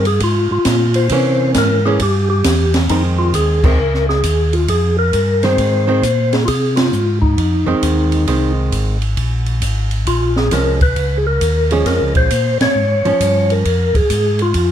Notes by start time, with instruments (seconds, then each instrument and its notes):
Already playing: tonewheel organ G2
0.05 tonewheel organ G#4, ride
0.20 tonewheel organ G#2 F4, kick, ride
0.51 tonewheel organ G#2 F4
0.65 tonewheel organ A#2, kick, snare, hi-hat pedal, ride
0.94 tonewheel organ C5, ride
1.09 tonewheel organ C3, hollow-body jazz guitar E3 A#3 C#4, kick, ride
1.54 tonewheel organ G#2 A#4, kick, snare, hi-hat pedal, ride
1.85 hollow-body jazz guitar E3 A#3 C#4, tonewheel organ G#4
1.99 tonewheel organ G2 G4, kick, ride
2.30 tonewheel organ G4
2.44 tonewheel organ E2, kick, snare, hi-hat pedal, ride
2.74 snare, ride
2.89 tonewheel organ F2 D#4, hollow-body jazz guitar D#3 G#3 C4, kick, ride
3.19 tonewheel organ F4
3.34 tonewheel organ D#2 G#4, kick, hi-hat pedal, ride
3.64 hollow-body jazz guitar D#3 G#3 C4, tonewheel organ A#4, kick, crash
3.79 tonewheel organ C#2
3.94 snare
4.09 tonewheel organ G#4, snare
4.24 tonewheel organ D#2, kick, hi-hat pedal, ride
4.53 tonewheel organ F4, ride
4.68 tonewheel organ F2 G#4, kick, ride
4.99 tonewheel organ A#4
5.13 tonewheel organ G2, kick, hi-hat pedal, ride
5.43 hollow-body jazz guitar D#3 G#3 C4, tonewheel organ C5, snare, ride
5.58 tonewheel organ G#2, kick, ride
5.87 hollow-body jazz guitar D#3 G#3 C4
6.03 tonewheel organ A#2, kick, hi-hat pedal, ride
6.33 tonewheel organ G#4, snare, ride
6.45 tonewheel organ C3 F4 G#4, kick, ride
6.76 tonewheel organ F4, snare, ride
6.92 tonewheel organ G#2, hi-hat pedal
7.22 tonewheel organ D#4, kick
7.38 tonewheel organ F2, kick, ride
7.66 tonewheel organ F2, hollow-body jazz guitar D#3 G#3 C4
7.82 tonewheel organ D#2, kick, hi-hat pedal, ride
8.12 ride
8.27 tonewheel organ C2, hollow-body jazz guitar D#3 G#3 C4, kick, ride
8.72 tonewheel organ G#1, kick, hi-hat pedal, ride
9.02 ride
9.17 tonewheel organ A#1, kick, ride
9.46 ride
9.62 tonewheel organ G#1, kick, hi-hat pedal, ride
9.91 ride
10.07 tonewheel organ A#1 F4, kick, ride
10.36 tonewheel organ G#4, snare
10.51 tonewheel organ C2 A#4, hollow-body jazz guitar F3 G#3 C#4, kick, snare, hi-hat pedal, ride
10.81 tonewheel organ B4, kick, ride
10.96 tonewheel organ C#2, kick, ride
11.17 tonewheel organ G#4
11.27 tonewheel organ A#4
11.41 tonewheel organ D#2, kick, hi-hat pedal, ride
11.71 hollow-body jazz guitar F3 G#3 C#4, tonewheel organ G#4, ride
11.86 tonewheel organ F2 A#4, kick, snare, ride
12.01 tonewheel organ C#2
12.15 tonewheel organ A#1 C5, kick, ride
12.30 tonewheel organ A#2, kick, hi-hat pedal, ride
12.60 tonewheel organ A#2 C#5, snare, ride
12.75 tonewheel organ G#2
13.05 tonewheel organ G#2, hollow-body jazz guitar F3 C#4, ride
13.20 tonewheel organ G2, kick, hi-hat pedal, ride
13.50 tonewheel organ A#4, ride
13.65 tonewheel organ F2, kick, ride
13.95 tonewheel organ F2 G#4, kick, ride
14.10 tonewheel organ G#2, kick, hi-hat pedal, ride
14.39 tonewheel organ F4, ride
14.54 tonewheel organ F2, kick, ride